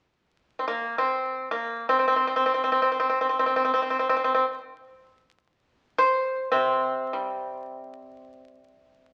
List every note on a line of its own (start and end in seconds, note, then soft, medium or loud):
0.59 0.67 C4 soft
0.68 0.98 A#3 medium
0.98 1.50 C4 soft
1.51 1.87 A#3 soft
1.89 1.98 C4 soft
1.99 2.06 C4 soft
2.08 2.15 C4 soft
2.16 2.26 C4 soft
2.27 2.35 C4 soft
2.36 2.45 C4 soft
2.46 2.53 C4 soft
2.54 2.63 C4 soft
2.64 2.71 C4 soft
2.72 2.81 C4 soft
2.82 2.91 C4 soft
2.92 2.98 C4 soft
3.00 3.08 C4 soft
3.09 3.20 C4 soft
3.21 3.28 C4 soft
3.29 3.38 C4 soft
3.39 3.45 C4 soft
3.46 3.55 C4 soft
3.56 3.63 C4 soft
3.65 3.72 C4 soft
3.74 3.81 C4 soft
3.82 3.89 C4 soft
3.90 3.98 C4 soft
3.99 4.08 C4 soft
4.09 4.15 C4 soft
4.17 4.23 C4 soft
4.24 4.33 C4 soft
4.34 4.44 C4 soft
5.98 6.50 C5 medium
6.52 9.13 C3 soft
6.52 9.13 C4 medium
7.13 9.13 G3 soft